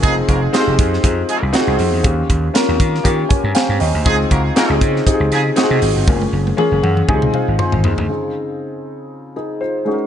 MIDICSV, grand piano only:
0, 0, Header, 1, 2, 480
1, 0, Start_track
1, 0, Key_signature, -5, "major"
1, 0, Tempo, 504202
1, 32, Time_signature, 4, 2, 24, 8
1, 9583, End_track
2, 0, Start_track
2, 0, Title_t, "Grand piano"
2, 0, Program_c, 0, 0
2, 0, Control_c, 0, 64, 127
2, 23, Note_on_c, 0, 60, 80
2, 26, Note_on_c, 0, 63, 76
2, 29, Note_on_c, 0, 65, 74
2, 35, Note_on_c, 0, 68, 90
2, 43, Control_c, 0, 64, 0
2, 188, Control_c, 0, 64, 127
2, 477, Note_off_c, 0, 60, 0
2, 478, Note_off_c, 0, 63, 0
2, 480, Note_off_c, 0, 65, 0
2, 483, Note_off_c, 0, 68, 0
2, 502, Note_on_c, 0, 60, 98
2, 508, Note_on_c, 0, 63, 88
2, 510, Note_on_c, 0, 65, 87
2, 514, Note_on_c, 0, 67, 89
2, 569, Note_on_c, 0, 68, 103
2, 574, Note_off_c, 0, 67, 0
2, 956, Note_off_c, 0, 60, 0
2, 959, Note_off_c, 0, 63, 0
2, 960, Note_off_c, 0, 65, 0
2, 975, Note_off_c, 0, 68, 0
2, 979, Note_on_c, 0, 60, 83
2, 982, Note_on_c, 0, 63, 75
2, 987, Note_on_c, 0, 65, 76
2, 989, Note_on_c, 0, 68, 92
2, 1434, Note_off_c, 0, 60, 0
2, 1435, Note_off_c, 0, 63, 0
2, 1438, Note_off_c, 0, 65, 0
2, 1439, Note_off_c, 0, 68, 0
2, 1453, Note_on_c, 0, 60, 99
2, 1455, Note_on_c, 0, 63, 89
2, 1461, Note_on_c, 0, 65, 91
2, 1467, Note_on_c, 0, 66, 84
2, 1523, Note_on_c, 0, 68, 103
2, 1530, Note_off_c, 0, 66, 0
2, 1910, Note_off_c, 0, 60, 0
2, 1911, Note_off_c, 0, 63, 0
2, 1914, Note_off_c, 0, 65, 0
2, 1930, Note_on_c, 0, 58, 71
2, 1935, Note_on_c, 0, 61, 76
2, 1938, Note_on_c, 0, 65, 78
2, 1942, Note_on_c, 0, 67, 83
2, 1945, Note_off_c, 0, 68, 0
2, 1961, Control_c, 0, 64, 0
2, 2096, Control_c, 0, 64, 127
2, 2388, Note_off_c, 0, 58, 0
2, 2391, Note_off_c, 0, 61, 0
2, 2392, Note_off_c, 0, 65, 0
2, 2394, Note_off_c, 0, 67, 0
2, 2415, Note_on_c, 0, 58, 92
2, 2419, Note_on_c, 0, 61, 93
2, 2424, Note_on_c, 0, 65, 90
2, 2430, Note_on_c, 0, 70, 111
2, 2870, Note_off_c, 0, 58, 0
2, 2872, Note_off_c, 0, 61, 0
2, 2875, Note_off_c, 0, 65, 0
2, 2878, Note_off_c, 0, 70, 0
2, 2892, Note_on_c, 0, 58, 97
2, 2893, Note_on_c, 0, 61, 90
2, 2897, Note_on_c, 0, 65, 86
2, 2900, Note_on_c, 0, 67, 104
2, 3126, Note_off_c, 0, 67, 0
2, 3134, Note_on_c, 0, 73, 70
2, 3134, Note_on_c, 0, 80, 77
2, 3140, Note_on_c, 0, 67, 58
2, 3348, Note_off_c, 0, 58, 0
2, 3349, Note_off_c, 0, 61, 0
2, 3351, Note_off_c, 0, 65, 0
2, 3362, Note_off_c, 0, 80, 0
2, 3367, Note_off_c, 0, 73, 0
2, 3370, Note_off_c, 0, 67, 0
2, 3377, Note_on_c, 0, 79, 79
2, 3378, Note_on_c, 0, 77, 79
2, 3382, Note_on_c, 0, 72, 67
2, 3603, Note_off_c, 0, 79, 0
2, 3609, Note_off_c, 0, 77, 0
2, 3611, Note_off_c, 0, 72, 0
2, 3618, Note_on_c, 0, 75, 71
2, 3619, Note_on_c, 0, 79, 64
2, 3624, Note_on_c, 0, 73, 57
2, 3844, Note_off_c, 0, 75, 0
2, 3861, Note_on_c, 0, 60, 85
2, 3862, Note_on_c, 0, 63, 77
2, 3868, Note_on_c, 0, 65, 82
2, 3869, Note_on_c, 0, 68, 85
2, 3878, Control_c, 0, 64, 0
2, 4040, Control_c, 0, 64, 127
2, 4077, Note_off_c, 0, 79, 0
2, 4080, Note_off_c, 0, 73, 0
2, 4312, Note_off_c, 0, 60, 0
2, 4313, Note_off_c, 0, 63, 0
2, 4316, Note_off_c, 0, 65, 0
2, 4316, Note_off_c, 0, 68, 0
2, 4343, Note_on_c, 0, 60, 98
2, 4344, Note_on_c, 0, 63, 87
2, 4349, Note_on_c, 0, 65, 97
2, 4355, Note_on_c, 0, 68, 106
2, 4793, Note_off_c, 0, 60, 0
2, 4794, Note_off_c, 0, 63, 0
2, 4796, Note_off_c, 0, 65, 0
2, 4799, Note_off_c, 0, 68, 0
2, 4820, Note_on_c, 0, 60, 83
2, 4820, Note_on_c, 0, 63, 72
2, 4827, Note_on_c, 0, 65, 77
2, 4830, Note_on_c, 0, 67, 73
2, 4888, Note_off_c, 0, 67, 0
2, 4890, Note_on_c, 0, 68, 87
2, 5271, Note_off_c, 0, 63, 0
2, 5272, Note_off_c, 0, 60, 0
2, 5275, Note_off_c, 0, 65, 0
2, 5292, Note_on_c, 0, 60, 97
2, 5299, Note_on_c, 0, 63, 91
2, 5303, Note_on_c, 0, 65, 88
2, 5306, Note_off_c, 0, 68, 0
2, 5308, Note_on_c, 0, 66, 87
2, 5360, Note_on_c, 0, 68, 110
2, 5367, Note_off_c, 0, 66, 0
2, 5748, Note_off_c, 0, 60, 0
2, 5751, Note_off_c, 0, 63, 0
2, 5753, Note_off_c, 0, 65, 0
2, 5781, Note_off_c, 0, 68, 0
2, 5782, Note_on_c, 0, 58, 80
2, 5784, Note_on_c, 0, 61, 76
2, 5790, Note_on_c, 0, 65, 68
2, 5795, Note_on_c, 0, 68, 82
2, 5796, Control_c, 0, 64, 0
2, 5950, Control_c, 0, 64, 127
2, 6233, Note_off_c, 0, 58, 0
2, 6234, Note_off_c, 0, 61, 0
2, 6237, Note_off_c, 0, 65, 0
2, 6239, Note_off_c, 0, 68, 0
2, 6254, Note_on_c, 0, 58, 102
2, 6258, Note_on_c, 0, 61, 89
2, 6261, Note_on_c, 0, 65, 87
2, 6267, Note_on_c, 0, 68, 111
2, 6501, Note_on_c, 0, 78, 68
2, 6709, Note_off_c, 0, 58, 0
2, 6711, Note_off_c, 0, 61, 0
2, 6712, Note_off_c, 0, 65, 0
2, 6715, Note_off_c, 0, 68, 0
2, 6725, Note_off_c, 0, 78, 0
2, 6743, Note_on_c, 0, 60, 84
2, 6748, Note_on_c, 0, 63, 88
2, 6748, Note_on_c, 0, 80, 80
2, 6751, Note_on_c, 0, 65, 80
2, 6755, Control_c, 0, 64, 0
2, 6755, Note_on_c, 0, 67, 75
2, 6808, Note_on_c, 0, 68, 96
2, 6811, Note_off_c, 0, 67, 0
2, 6925, Control_c, 0, 64, 127
2, 6969, Note_off_c, 0, 80, 0
2, 6986, Note_off_c, 0, 63, 0
2, 6987, Note_off_c, 0, 65, 0
2, 6992, Note_on_c, 0, 77, 65
2, 6996, Note_on_c, 0, 72, 56
2, 7016, Note_off_c, 0, 68, 0
2, 7194, Note_off_c, 0, 60, 0
2, 7211, Note_off_c, 0, 72, 0
2, 7216, Note_off_c, 0, 77, 0
2, 7224, Note_on_c, 0, 84, 73
2, 7226, Note_on_c, 0, 72, 68
2, 7228, Note_on_c, 0, 65, 63
2, 7453, Note_off_c, 0, 72, 0
2, 7455, Note_off_c, 0, 65, 0
2, 7467, Note_on_c, 0, 68, 59
2, 7472, Note_on_c, 0, 63, 56
2, 7671, Note_off_c, 0, 84, 0
2, 7691, Note_off_c, 0, 63, 0
2, 7692, Note_on_c, 0, 49, 57
2, 7700, Note_off_c, 0, 68, 0
2, 7700, Note_on_c, 0, 60, 54
2, 7705, Note_on_c, 0, 63, 52
2, 7709, Note_on_c, 0, 65, 51
2, 7714, Note_on_c, 0, 68, 64
2, 7717, Control_c, 0, 64, 0
2, 7882, Control_c, 0, 64, 127
2, 8886, Note_off_c, 0, 63, 0
2, 8888, Note_off_c, 0, 65, 0
2, 8891, Note_off_c, 0, 68, 0
2, 8912, Note_on_c, 0, 68, 57
2, 8915, Note_on_c, 0, 63, 52
2, 9140, Note_off_c, 0, 68, 0
2, 9142, Note_off_c, 0, 63, 0
2, 9146, Note_on_c, 0, 72, 63
2, 9151, Note_on_c, 0, 65, 48
2, 9352, Note_off_c, 0, 49, 0
2, 9356, Note_off_c, 0, 60, 0
2, 9377, Note_on_c, 0, 56, 54
2, 9385, Note_on_c, 0, 61, 52
2, 9391, Note_on_c, 0, 63, 52
2, 9397, Note_on_c, 0, 66, 50
2, 9403, Note_on_c, 0, 68, 52
2, 9405, Control_c, 0, 64, 0
2, 9457, Note_on_c, 0, 70, 61
2, 9460, Note_off_c, 0, 68, 0
2, 9560, Control_c, 0, 64, 127
2, 9583, Note_off_c, 0, 56, 0
2, 9583, Note_off_c, 0, 61, 0
2, 9583, Note_off_c, 0, 63, 0
2, 9583, Note_off_c, 0, 65, 0
2, 9583, Note_off_c, 0, 66, 0
2, 9583, Note_off_c, 0, 70, 0
2, 9583, Note_off_c, 0, 72, 0
2, 9583, End_track
0, 0, End_of_file